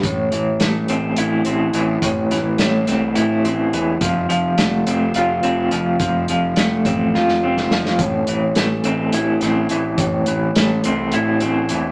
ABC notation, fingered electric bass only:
X:1
M:7/8
L:1/8
Q:1/4=106
K:Am
V:1 name="Fingered electric bass" clef=bass
A,,, A,,, A,,, A,,, A,,, A,,, A,,, | A,,, A,,, A,,, C,, A,, A,,, E,,, | F,,, F,,, F,,, F,,, F,,, F,,, F,,, | F,,, F,,, F,,, A,,, F,, F,,, F,,, |
A,,, A,,, A,,, A,,, A,,, A,,, A,,, | A,,, A,,, A,,, C,, A,, A,,, E,,, |]